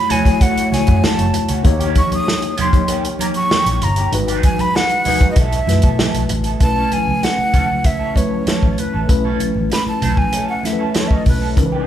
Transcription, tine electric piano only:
0.00 0.08 A3 medium
0.00 0.10 E4 medium
0.00 0.11 F#4 medium
0.00 0.12 C#5 medium
0.08 0.19 A3 medium
0.08 0.20 E4 medium
0.08 0.20 F#4 medium
0.08 0.21 C#5 medium
0.23 0.54 A3 medium
0.23 0.55 E4 medium
0.23 0.55 F#4 medium
0.23 0.56 C#5 medium
0.70 1.30 A3 medium
0.70 1.30 E4 medium
0.70 1.31 F#4 medium
0.70 1.32 C#5 medium
1.63 2.33 A#3 loud
1.63 2.33 D#4 loud
1.63 2.34 G4 loud
1.63 2.34 C#5 loud
2.71 3.51 A#3 medium
2.71 3.51 D#4 medium
2.71 3.52 G4 medium
2.71 3.53 C#5 medium
4.12 4.71 G#3 medium
4.12 4.72 D#4 medium
4.12 4.72 F#4 medium
4.12 4.73 B4 loud
5.05 5.15 G#3 medium
5.05 5.16 D#4 medium
5.05 5.16 F#4 medium
5.05 5.17 B4 medium
5.20 5.36 G#3 medium
5.20 5.37 D#4 medium
5.20 5.37 F#4 medium
5.20 5.38 B4 medium
5.66 6.26 A3 medium
5.66 6.26 E4 medium
5.66 6.27 F#4 medium
5.66 6.28 B4 medium
6.60 7.39 A3 medium
6.60 7.39 C#4 medium
6.60 7.40 E4 medium
6.60 7.40 B4 medium
8.15 8.74 A3 medium
8.15 8.75 C#4 medium
8.15 8.75 E4 medium
8.15 8.76 B4 medium
9.08 9.87 A3 medium
9.08 9.87 C#4 medium
9.08 9.88 E4 medium
9.08 9.88 B4 medium
10.63 11.22 A3 medium
10.63 11.23 C#4 medium
10.63 11.24 E4 medium
10.63 10.72 A4 medium
10.73 11.27 B4 medium
11.56 11.87 E3 medium
11.56 11.87 C#4 medium
11.56 11.87 D#4 medium
11.56 11.65 A#4 medium
11.66 11.87 B4 loud

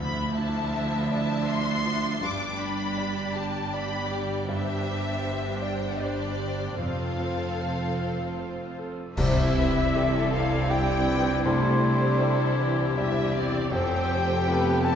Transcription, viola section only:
0.00 2.19 F3 medium
0.00 4.45 D4 medium
2.23 6.75 G3 medium
4.49 6.75 D4 medium
6.79 8.97 C4 medium
6.79 8.93 F4 medium
9.17 9.53 G3 medium
9.17 9.90 E4 medium
9.57 11.41 C4 medium
9.94 10.69 A4 medium
10.69 11.07 G4 medium
11.07 11.45 F3 medium
11.45 12.19 A3 medium
11.45 11.82 E4 medium
11.83 12.94 E4 medium
12.21 12.59 G3 medium
12.59 12.96 E3 medium
12.96 13.34 G3 medium
12.96 13.71 G4 medium
13.34 13.71 C4 medium
13.72 14.45 C4 medium
13.72 14.95 G4 medium
14.47 14.95 B3 medium

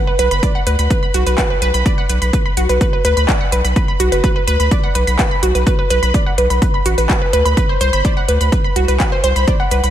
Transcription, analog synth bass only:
0.19 0.29 B1 medium
0.31 0.40 F#1 medium
0.67 0.76 D2 loud
0.79 0.88 D2 medium
1.14 1.24 B1 medium
1.26 1.35 B1 medium
1.62 1.71 B1 medium
1.74 1.83 B1 medium
2.09 2.19 B1 loud
2.22 2.31 B1 medium
2.57 2.67 B1 medium
2.69 2.78 B1 medium
3.05 3.14 D2 medium
3.17 3.26 D2 medium
3.52 3.62 B1 medium
3.65 3.74 B1 medium
4.00 4.09 B1 loud
4.12 4.21 F#1 medium
4.47 4.57 D2 medium
4.60 4.69 D2 medium
4.95 5.05 B1 medium
5.07 5.16 B1 medium
5.43 5.52 B1 medium
5.55 5.64 B1 medium
5.90 6.00 B1 medium
6.03 6.12 B1 medium
6.38 6.48 B1 medium
6.50 6.59 B1 medium
6.86 6.95 A1 medium
6.98 7.07 A1 medium
7.33 7.43 D2 medium
7.45 7.55 D2 medium
7.81 7.90 C2 loud
7.93 8.02 G1 medium
8.28 8.38 D2 loud
8.41 8.50 D2 medium
8.76 8.86 C2 medium
8.88 8.97 C2 medium
9.24 9.33 C2 medium
9.36 9.45 C2 medium
9.71 9.81 C2 medium
9.84 9.90 C2 medium

